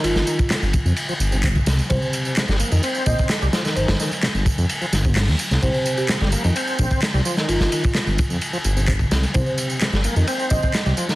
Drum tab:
RD |x-x-x-x-x-x---xx|x-x-x-x-x-x-xxx-|xx-xx-x-x-x---x-|x-x-x-x-x-x-xxx-|
HH |----------------|----------------|------------o---|----------------|
TB |xxxxxxxxxxxxxxxx|xxxxxxxxxxxxxxxx|xxxxxxxxxxxxxxxx|xxxxxxxxxxxxxxxx|
CP |----x-------x---|----x-------x---|----x-------x---|----x-------x---|
SD |-o--o---------o-|----oo------o-oo|-oo-o-----o-o--o|----oo------o--o|
BD |---o--o-----oo--|o---------oo----|------o----o----|o---------oo----|

RD |x-x-x-x-x-x-x-xx|x-x-x-x-x-x-xxx-|
HH |----------------|----------------|
TB |xxxxxxxxxxxxxxxx|xxxxxxxxxxxxxxxx|
CP |----x-------x---|----x-------x---|
SD |-o--o---------o-|----oo------o--o|
BD |---o--o-----oo--|o---------oo----|